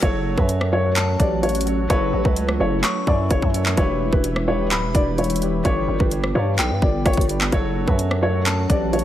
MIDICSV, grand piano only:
0, 0, Header, 1, 2, 480
1, 0, Start_track
1, 0, Tempo, 468750
1, 26, Time_signature, 4, 2, 24, 8
1, 9260, End_track
2, 0, Start_track
2, 0, Title_t, "Grand piano"
2, 0, Program_c, 0, 0
2, 0, Control_c, 0, 64, 127
2, 14, Note_on_c, 0, 54, 100
2, 23, Note_on_c, 0, 66, 91
2, 32, Note_on_c, 0, 69, 93
2, 40, Control_c, 0, 64, 0
2, 42, Note_on_c, 0, 73, 112
2, 236, Control_c, 0, 64, 127
2, 687, Note_off_c, 0, 54, 0
2, 692, Note_off_c, 0, 66, 0
2, 697, Note_off_c, 0, 69, 0
2, 701, Note_off_c, 0, 73, 0
2, 728, Note_on_c, 0, 54, 73
2, 737, Note_on_c, 0, 66, 75
2, 746, Note_on_c, 0, 69, 62
2, 755, Note_on_c, 0, 73, 85
2, 834, Note_off_c, 0, 54, 0
2, 843, Note_off_c, 0, 66, 0
2, 849, Note_on_c, 0, 54, 75
2, 852, Note_off_c, 0, 69, 0
2, 858, Note_on_c, 0, 66, 69
2, 862, Note_off_c, 0, 73, 0
2, 868, Note_on_c, 0, 69, 73
2, 877, Note_on_c, 0, 73, 77
2, 1636, Note_off_c, 0, 54, 0
2, 1641, Note_off_c, 0, 66, 0
2, 1646, Note_off_c, 0, 69, 0
2, 1650, Note_off_c, 0, 73, 0
2, 1692, Note_on_c, 0, 54, 76
2, 1701, Note_on_c, 0, 66, 64
2, 1710, Note_on_c, 0, 69, 67
2, 1720, Note_on_c, 0, 73, 81
2, 1918, Note_off_c, 0, 54, 0
2, 1926, Note_off_c, 0, 66, 0
2, 1931, Note_off_c, 0, 69, 0
2, 1934, Note_on_c, 0, 54, 108
2, 1935, Note_off_c, 0, 73, 0
2, 1943, Note_on_c, 0, 66, 86
2, 1952, Note_on_c, 0, 69, 93
2, 1962, Note_on_c, 0, 71, 121
2, 2607, Note_off_c, 0, 54, 0
2, 2612, Note_off_c, 0, 66, 0
2, 2617, Note_off_c, 0, 69, 0
2, 2621, Note_off_c, 0, 71, 0
2, 2649, Note_on_c, 0, 54, 75
2, 2658, Note_on_c, 0, 66, 72
2, 2667, Note_on_c, 0, 69, 67
2, 2677, Note_on_c, 0, 73, 83
2, 3547, Note_off_c, 0, 54, 0
2, 3552, Note_off_c, 0, 66, 0
2, 3557, Note_off_c, 0, 69, 0
2, 3561, Note_off_c, 0, 73, 0
2, 3612, Note_on_c, 0, 54, 68
2, 3621, Note_on_c, 0, 66, 62
2, 3631, Note_on_c, 0, 69, 70
2, 3640, Note_on_c, 0, 73, 81
2, 3841, Note_off_c, 0, 54, 0
2, 3846, Note_off_c, 0, 66, 0
2, 3849, Note_on_c, 0, 52, 100
2, 3851, Note_off_c, 0, 69, 0
2, 3855, Note_off_c, 0, 73, 0
2, 3858, Note_on_c, 0, 64, 91
2, 3868, Note_on_c, 0, 67, 91
2, 3877, Note_on_c, 0, 71, 103
2, 3880, Control_c, 0, 64, 0
2, 4059, Control_c, 0, 64, 127
2, 4525, Note_off_c, 0, 52, 0
2, 4530, Note_off_c, 0, 64, 0
2, 4534, Note_off_c, 0, 67, 0
2, 4539, Note_off_c, 0, 71, 0
2, 4571, Note_on_c, 0, 52, 74
2, 4581, Note_on_c, 0, 64, 72
2, 4590, Note_on_c, 0, 67, 74
2, 4599, Note_on_c, 0, 71, 86
2, 4678, Note_off_c, 0, 52, 0
2, 4688, Note_off_c, 0, 64, 0
2, 4694, Note_on_c, 0, 52, 73
2, 4697, Note_off_c, 0, 67, 0
2, 4703, Note_on_c, 0, 64, 72
2, 4704, Note_off_c, 0, 71, 0
2, 4712, Note_on_c, 0, 67, 70
2, 4722, Note_on_c, 0, 71, 86
2, 5479, Note_off_c, 0, 52, 0
2, 5483, Note_off_c, 0, 64, 0
2, 5488, Note_off_c, 0, 67, 0
2, 5493, Note_off_c, 0, 71, 0
2, 5533, Note_on_c, 0, 52, 70
2, 5542, Note_on_c, 0, 64, 72
2, 5551, Note_on_c, 0, 67, 69
2, 5561, Note_on_c, 0, 71, 80
2, 5762, Note_off_c, 0, 52, 0
2, 5765, Note_off_c, 0, 67, 0
2, 5766, Note_off_c, 0, 64, 0
2, 5771, Note_on_c, 0, 55, 100
2, 5774, Note_off_c, 0, 71, 0
2, 5780, Note_on_c, 0, 67, 88
2, 5789, Note_on_c, 0, 71, 89
2, 5799, Note_on_c, 0, 62, 113
2, 5800, Control_c, 0, 64, 0
2, 6008, Control_c, 0, 64, 127
2, 6446, Note_off_c, 0, 55, 0
2, 6451, Note_off_c, 0, 67, 0
2, 6455, Note_off_c, 0, 71, 0
2, 6460, Note_off_c, 0, 62, 0
2, 6496, Note_on_c, 0, 55, 78
2, 6505, Note_on_c, 0, 67, 64
2, 6514, Note_on_c, 0, 71, 72
2, 6523, Note_on_c, 0, 74, 89
2, 7391, Note_off_c, 0, 55, 0
2, 7396, Note_off_c, 0, 67, 0
2, 7400, Note_off_c, 0, 71, 0
2, 7405, Note_off_c, 0, 74, 0
2, 7451, Note_on_c, 0, 55, 66
2, 7460, Note_on_c, 0, 67, 62
2, 7470, Note_on_c, 0, 71, 58
2, 7479, Note_on_c, 0, 74, 75
2, 7681, Note_off_c, 0, 55, 0
2, 7686, Note_off_c, 0, 67, 0
2, 7690, Note_off_c, 0, 71, 0
2, 7694, Note_on_c, 0, 54, 100
2, 7695, Note_off_c, 0, 74, 0
2, 7703, Note_on_c, 0, 66, 93
2, 7713, Note_on_c, 0, 69, 96
2, 7718, Control_c, 0, 64, 0
2, 7722, Note_on_c, 0, 73, 110
2, 7882, Control_c, 0, 64, 127
2, 8368, Note_off_c, 0, 54, 0
2, 8372, Note_off_c, 0, 66, 0
2, 8377, Note_off_c, 0, 69, 0
2, 8382, Note_off_c, 0, 73, 0
2, 8408, Note_on_c, 0, 54, 75
2, 8417, Note_on_c, 0, 66, 77
2, 8426, Note_on_c, 0, 69, 62
2, 8436, Note_on_c, 0, 73, 87
2, 8514, Note_off_c, 0, 54, 0
2, 8523, Note_off_c, 0, 66, 0
2, 8529, Note_on_c, 0, 54, 72
2, 8532, Note_off_c, 0, 69, 0
2, 8538, Note_on_c, 0, 66, 69
2, 8542, Note_off_c, 0, 73, 0
2, 8548, Note_on_c, 0, 69, 71
2, 8557, Note_on_c, 0, 73, 78
2, 9260, Note_off_c, 0, 54, 0
2, 9260, Note_off_c, 0, 66, 0
2, 9260, Note_off_c, 0, 69, 0
2, 9260, Note_off_c, 0, 73, 0
2, 9260, End_track
0, 0, End_of_file